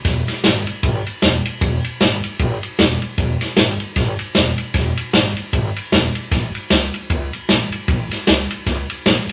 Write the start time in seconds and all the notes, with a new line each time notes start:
0.05 E1, kick, snare, ride
0.28 muted upright bass stroke, snare, ride
0.44 G#1, snare, ride
0.67 muted upright bass stroke, ride
0.83 G#1, kick, ride
1.06 muted upright bass stroke, ride
1.22 E1, snare, ride
1.45 muted upright bass stroke, ride
1.61 E1, kick, ride
1.84 muted upright bass stroke, ride
2.00 G#1, snare, ride
2.23 muted upright bass stroke, ride
2.39 G#1, kick, ride
2.63 muted upright bass stroke, ride
2.79 E1, snare, ride
3.02 muted upright bass stroke, ride
3.18 E1, kick, ride
3.41 snare, ride
3.57 G#1, snare, ride
3.80 muted upright bass stroke, ride
3.96 G#1, kick, snare, ride
4.19 ride
4.35 E1, snare, ride
4.58 muted upright bass stroke, ride
4.74 E1, kick, snare, ride
4.97 ride
5.13 G#1, snare, ride
5.36 muted upright bass stroke, ride
5.53 G#1, kick, ride
5.76 ride
5.92 E1, snare, ride
6.14 muted upright bass stroke, ride
6.31 A1, kick, snare, ride
6.55 muted upright bass stroke, ride
6.70 C#2, snare, ride
6.94 muted upright bass stroke, ride
7.10 C#2, kick, ride
7.33 muted upright bass stroke, ride
7.49 A1, snare, ride
7.72 muted upright bass stroke, ride
7.88 A1, kick, ride
8.11 muted upright bass stroke, snare, ride
8.27 C#2, snare, ride
8.51 ride
8.66 C#2, kick, snare, ride
8.90 ride
9.06 A1, snare, ride
9.29 muted upright bass stroke, ride